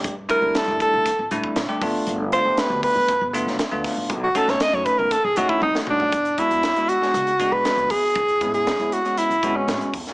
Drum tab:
HH |x-x-x-x-x-x-x-o-|x-x-x-o-x-x-x-o-|x-x-x-x-x-x-----|xxxxxxx-xxx-xxo-|
SD |----o-------o---|----o------oo-o-|---oo--------o--|----o--o----o---|
T1 |----------------|----------------|------------o---|----------------|
T2 |----------------|----------------|--------------o-|----------------|
FT |----------------|----------------|---------------o|----------------|
BD |o-o---o-o--o--o-|------o-o-----o-|o-o---o-o--o----|o-o-------o---o-|

HH |xxxxxxxxxxx-xxox|
SD |----o-------o--o|
T1 |----------------|
T2 |----------------|
FT |----------------|
BD |o-o-------o---o-|